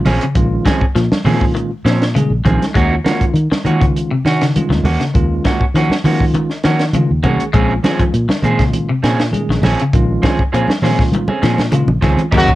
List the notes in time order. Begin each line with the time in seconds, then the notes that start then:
Already playing: D#3
0.05 A#1 F3 C4 C#4 G#4, open hi-hat, high conga, low conga
0.21 C#3, closed hi-hat
0.35 A#1 D#3 G#3 C#4 F4, kick, closed hi-hat, high conga
0.65 D#3 F3 C4 C#4 G#4, kick, snare, closed hi-hat, high conga
0.81 kick
0.95 A#2 F3, snare, closed hi-hat, high conga
1.12 snare, high conga
1.24 A#2 D#3 F3 G#3 C4 C#4 F4 G#4, open hi-hat, low conga
1.41 kick
1.55 D#3, closed hi-hat, high conga
1.85 A#2 F3 C4 C#4, snare, closed hi-hat
2.02 snare, closed hi-hat
2.15 C#3 D#3 G#3 C#4 G#4, closed hi-hat, high conga
2.30 A#1
2.45 A#1 D#3 F3 G#3 C4 C#4 D#4 G#4, muted clean electric guitar stroke, kick, closed hi-hat, high conga, low conga
2.62 snare, closed hi-hat, high conga
2.75 D#2 G#3 A#3 C#4 F#4, kick, closed hi-hat, high conga
2.90 C#4 F4
3.04 D#3 G#3 A#3 C#4 F4 F#4, snare, closed hi-hat, high conga
3.21 kick, closed hi-hat
3.34 D#3, closed hi-hat, high conga
3.51 D#3, snare, high conga
3.64 D#3 G#3 A#3 C#4 F4 F#4, closed hi-hat, low conga
3.80 C#3, kick, closed hi-hat
3.96 closed hi-hat, high conga
4.11 C3
4.25 D#3 C#4 F#4, muted clean electric guitar stroke, snare, closed hi-hat
4.41 C#3, snare, closed hi-hat
4.56 D#3 G#3 C#4 F4, closed hi-hat, high conga, low conga
4.69 D#2 D#3, snare, high conga
4.83 D#2 A#3 C#4 F#4, open hi-hat, high conga, low conga
5.00 C#3, snare, closed hi-hat
5.14 D#2 D#3 G#3 C#4 F4, kick, closed hi-hat, high conga
5.45 D#3 A#3 C#4 F#4, kick, snare, closed hi-hat, high conga
5.61 kick
5.74 D#3 F3 A#3 C#4 F#4, snare, closed hi-hat, high conga
5.90 snare, high conga
6.04 D#3 F3 G#3 A#3 C#4 F4 F#4, open hi-hat, low conga
6.20 kick
6.34 D#3, closed hi-hat, high conga, low conga
6.50 snare
6.64 D#3 F3 A#3 C#4 F#4, snare, closed hi-hat
6.79 snare, closed hi-hat
6.93 C#3 D#3 G#3 C#4 F4, closed hi-hat, high conga, low conga
7.11 D#2
7.23 C2 D#3 G#3 A#3 C#4 F#4 G#4, kick, closed hi-hat, high conga, low conga
7.40 closed hi-hat
7.53 A#1 F3 G#3 C4 C#4 G#4, kick, closed hi-hat, high conga
7.69 C#4 F4
7.83 D#3 F3 G#3 C4 C#4 F4 G#4, snare, closed hi-hat, high conga
8.00 F3, kick, closed hi-hat
8.13 A#2, closed hi-hat, high conga
8.29 D#3, snare, high conga
8.42 A#2 D#3 F3 G#3 C4 C#4 F4 G#4, muted clean electric guitar stroke, closed hi-hat, low conga
8.59 C#3, kick, snare, closed hi-hat
8.73 closed hi-hat, high conga, low conga
8.89 C3
9.03 A#2 F3 C4 C#4 G#4, snare, closed hi-hat
9.20 muted clean electric guitar stroke, snare, closed hi-hat
9.31 D#3 G#3 C#4 G#4, closed hi-hat, high conga
9.49 A#1 D#3, snare
9.62 A#1 F3 C4 C#4 G#4, snare, open hi-hat, high conga, low conga
9.79 C#3, closed hi-hat
9.93 A#1 D#3 G#3 C#4 F4, kick, closed hi-hat
10.22 D#3 F3 C4 C#4 G#4, kick, snare, closed hi-hat, high conga
10.39 kick
10.52 A#2 F3 C4 C#4 G#4, muted clean electric guitar stroke, closed hi-hat, high conga
10.68 snare, high conga
10.82 A#2 D#3 F3 G#3 C4 C#4 F4 G#4, snare, open hi-hat, low conga
10.99 kick, snare
11.12 D#3, closed hi-hat, high conga
11.28 C4 C#4 G#4, high conga
11.42 A#2 F3 C4 C#4 G#4, snare, closed hi-hat, low conga
11.58 snare, closed hi-hat, high conga
11.71 C#3 D#3 G#3 C#4 F4, closed hi-hat, low conga
11.87 A#1, low conga
12.01 C#2 D#3 F3 G#3 C4 C#4 F4 G#4, kick, snare, closed hi-hat, low conga
12.17 closed hi-hat, low conga
12.31 D#2 F#3 C#4 D#4 A#4, kick, snare, crash
12.36 F#2 C#3 F#4
12.48 kick, closed hi-hat